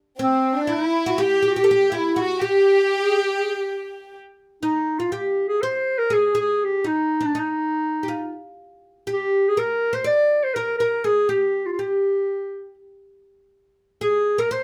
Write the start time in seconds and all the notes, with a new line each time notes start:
0.18 C4
0.22 C4
0.54 D4
0.61 D4
0.67 E4
0.73 E4
1.06 F#4
1.18 G4
1.43 G4
1.47 F#4 G4
1.56 G4
1.64 A4
1.71 G4
1.91 E4
1.97 E4
2.16 F#4
2.21 F#4
2.40 G4
2.45 G4
3.06 G#4
3.22 G4
3.40 G#4
3.56 G4
4.63 D#4
4.99 F4
5.11 G4
5.48 G#4
5.62 C5
5.98 A#4
6.10 G#4
6.35 G#4
6.40 G#4
6.64 G4
6.84 D#4
7.21 D4
7.25 D4
7.35 D#4
7.39 D#4
8.03 G4
8.08 F4
9.07 G4
9.13 G4
9.48 G#4
9.57 A#4
9.93 C5
10.04 D5
10.43 C5
10.54 A#4
10.78 A#4
11.04 G#4
11.29 G4
11.66 F4
11.72 F4
11.79 G4
14.01 G#4
14.38 A#4
14.51 C5